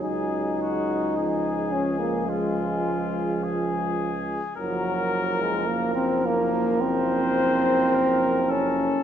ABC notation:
X:1
M:4/4
L:1/16
Q:1/4=53
K:Db
V:1 name="Flugelhorn"
A16 | B16 |]
V:2 name="Cornet"
A2 G2 A4 F4 A4 | B6- B z c4 B2 =A2 |]
V:3 name="Euphonium"
E6 D B, A,6 z2 | G,3 A, B, C B,2 C6 D2 |]
V:4 name="Trombone" clef=bass
G,4 F,12 | F,16 |]
V:5 name="Tuba" clef=bass
D,,16 | G,,,16 |]